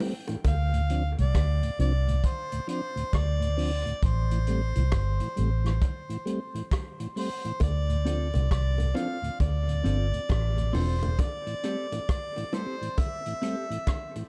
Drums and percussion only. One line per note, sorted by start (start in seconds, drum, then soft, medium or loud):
0.00 open hi-hat medium
0.00 low bongo medium
0.28 closed hi-hat medium
0.28 high bongo medium
0.44 kick loud
0.44 closed hi-hat loud
0.44 high bongo medium
0.74 closed hi-hat medium
0.90 closed hi-hat medium
1.18 closed hi-hat medium
1.35 kick loud
1.35 cross-stick loud
1.35 closed hi-hat loud
1.63 closed hi-hat medium
1.79 closed hi-hat medium
2.08 closed hi-hat medium
2.24 kick medium
2.24 closed hi-hat medium
2.52 closed hi-hat medium
2.69 closed hi-hat medium
2.97 closed hi-hat medium
3.13 kick loud
3.13 cross-stick loud
3.13 closed hi-hat medium
3.42 closed hi-hat medium
3.58 open hi-hat medium
3.87 closed hi-hat medium
4.03 kick loud
4.03 closed hi-hat medium
4.31 closed hi-hat medium
4.47 closed hi-hat medium
4.75 closed hi-hat medium
4.92 kick loud
4.92 cross-stick loud
4.92 closed hi-hat medium
5.20 closed hi-hat medium
5.37 closed hi-hat medium
5.66 cross-stick medium
5.66 closed hi-hat medium
5.81 kick medium
5.81 closed hi-hat medium
6.10 closed hi-hat medium
6.27 closed hi-hat medium
6.55 closed hi-hat medium
6.71 kick medium
6.71 cross-stick loud
6.71 closed hi-hat medium
7.00 closed hi-hat medium
7.17 open hi-hat medium
7.45 closed hi-hat soft
7.60 kick loud
7.60 closed hi-hat medium
7.60 high bongo medium
7.90 closed hi-hat medium
8.06 closed hi-hat medium
8.34 closed hi-hat medium
8.34 high bongo medium
8.51 kick loud
8.51 cross-stick loud
8.51 closed hi-hat loud
8.78 closed hi-hat medium
8.78 high bongo medium
8.95 closed hi-hat medium
8.95 low bongo medium
9.24 closed hi-hat soft
9.40 kick medium
9.40 closed hi-hat medium
9.40 high bongo medium
9.69 closed hi-hat medium
9.85 closed hi-hat medium
10.14 closed hi-hat medium
10.29 kick loud
10.29 cross-stick loud
10.29 closed hi-hat medium
10.29 high bongo medium
10.58 closed hi-hat medium
10.75 open hi-hat medium
10.75 low bongo medium
11.03 closed hi-hat soft
11.03 high bongo medium
11.19 kick loud
11.19 closed hi-hat loud
11.19 high bongo medium
11.47 closed hi-hat soft
11.64 closed hi-hat medium
11.92 closed hi-hat medium
11.92 high bongo medium
12.09 kick loud
12.09 cross-stick medium
12.09 closed hi-hat medium
12.36 closed hi-hat medium
12.36 high bongo soft
12.53 closed hi-hat medium
12.53 low bongo medium
12.82 closed hi-hat medium
12.98 kick loud
12.98 closed hi-hat medium
12.98 high bongo medium
13.26 closed hi-hat medium
13.43 closed hi-hat medium
13.71 closed hi-hat medium
13.87 kick loud
13.87 cross-stick loud
13.87 closed hi-hat medium
13.87 high bongo medium
14.15 closed hi-hat medium